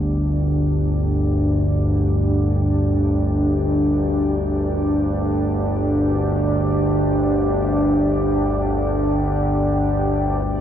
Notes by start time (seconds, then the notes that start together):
Already playing: G1 D2 D4 G4 D5
10.45 G1 D2